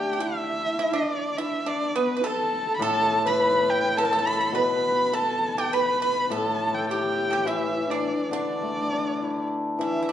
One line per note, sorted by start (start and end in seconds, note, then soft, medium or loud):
0.00 1.07 D3 medium
0.00 0.79 A3 soft
0.00 1.08 D4 soft
0.00 0.12 G4 medium
0.00 0.21 G4 medium
0.00 0.23 G5 medium
0.13 0.20 G4 soft
0.19 0.94 E4 medium
0.19 0.75 E4 medium
0.19 0.97 E5 medium
0.79 0.93 E4 medium
0.92 1.66 D4 medium
0.92 1.34 D4 medium
0.92 1.39 D5 medium
1.37 1.65 E4 medium
1.37 1.69 E5 medium
1.66 1.94 D4 medium
1.66 1.96 D4 medium
1.66 1.97 D5 medium
1.95 2.25 B3 medium
1.95 2.16 B3 medium
1.95 2.28 B4 medium
2.17 2.23 B4 medium
2.23 2.82 A4 medium
2.23 2.78 A4 medium
2.23 2.75 A5 medium
2.76 4.54 A2 medium
2.76 2.85 B5 medium
2.82 3.22 A4 medium
2.82 3.29 A5 loud
3.25 3.93 B4 medium
3.25 3.94 B4 medium
3.25 3.72 B5 medium
3.70 3.99 G5 loud
3.97 4.57 A4 medium
3.97 4.04 A4 medium
3.97 4.28 A5 loud
4.05 4.11 A4 medium
4.13 4.17 A4 medium
4.19 4.26 A4 medium
4.26 4.32 A4 medium
4.26 4.55 B5 medium
4.33 4.39 A4 medium
4.41 4.48 A4 medium
4.52 6.30 B2 soft
4.52 5.10 B4 medium
4.52 5.15 B4 medium
4.52 5.16 B5 medium
5.13 5.55 A4 medium
5.13 5.75 A4 medium
5.13 5.61 A5 medium
5.58 5.72 G4 medium
5.58 5.75 G5 medium
5.73 6.00 B4 medium
5.73 6.32 B4 medium
5.73 6.02 B5 medium
6.02 6.29 B4 medium
6.02 6.24 B5 medium
6.24 6.33 B5 medium
6.30 8.04 A2 medium
6.30 6.85 A4 medium
6.30 6.91 A4 medium
6.30 6.76 A5 medium
6.74 6.89 G5 medium
6.90 7.50 G4 medium
6.90 7.27 G4 medium
6.90 7.48 G5 medium
7.31 7.46 G4 medium
7.31 7.33 A4 medium
7.45 9.20 E3 medium
7.45 7.87 E4 medium
7.45 7.90 E4 medium
7.45 7.92 E5 medium
7.90 8.30 D4 medium
7.90 8.31 D4 medium
7.90 8.32 D5 medium
8.31 10.09 D3 medium
8.31 9.46 D4 medium
8.31 9.47 D4 medium
8.31 9.46 D5 medium
8.62 9.80 A3 soft
8.92 10.10 D4 soft
9.22 10.12 E4 soft
9.79 10.12 E3 medium
9.79 10.12 E4 medium
9.79 10.01 E4 medium
9.83 10.09 E5 medium
10.03 10.08 E4 soft
10.09 10.12 D4 medium